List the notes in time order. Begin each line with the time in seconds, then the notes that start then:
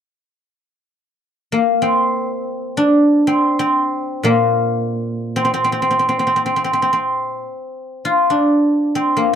1.52 A#3
1.82 C4
2.77 D4
3.27 C4
3.59 C4
4.23 A#2 A#3
5.36 C4
5.45 C4
5.54 C4
5.64 C4
5.72 C4
5.82 C4
5.91 C4
5.99 C4
6.09 C4
6.19 C4
6.27 C4
6.36 C4
6.46 C4
6.56 C4
6.64 C4
6.73 C4
6.82 C4
6.93 C4
8.05 F4
8.30 D4
8.95 C4
9.17 A#3